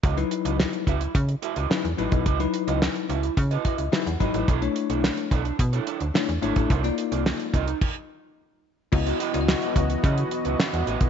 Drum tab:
CC |----------------|----------------|----------------|--------x-------|
HH |xxxx-xxxxxxx-xxx|xxxx-xxxxxxx-xxx|xxxx-xxxxxxx-xxx|xxxx-xxx--------|
CP |----x-------x---|----x-------x---|----x-------x---|----x-----------|
SD |----o-------o---|----o-------o---|----o-------o---|----o-----------|
BD |o-----o-o------o|o-------o-o---o-|o-----o-o------o|o-----o-o-------|

CC |x---------------|
HH |-xxx-xxxxxxx-xxx|
CP |----x-------x---|
SD |----o-------o---|
BD |o-----o-o------o|